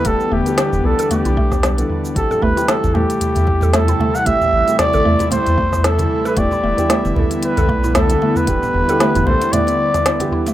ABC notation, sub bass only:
X:1
M:4/4
L:1/16
Q:"Swing 16ths" 1/4=114
K:Am
V:1 name="Sub bass" clef=bass
E,,, z E,,, z2 E,,, B,,, z2 B,,,4- B,,, z2 | A,,, z A,,, z2 A,,, E,, z2 E,,4- E,, z2 | A,,, z A,,, z2 A,,, E,, z2 E,,4- E,, z2 | E,,, z E,,, z2 E,,, B,,, z2 B,,,4- B,,, z2 |
E,,, z E,,, z2 E,,, B,,, z8 z |]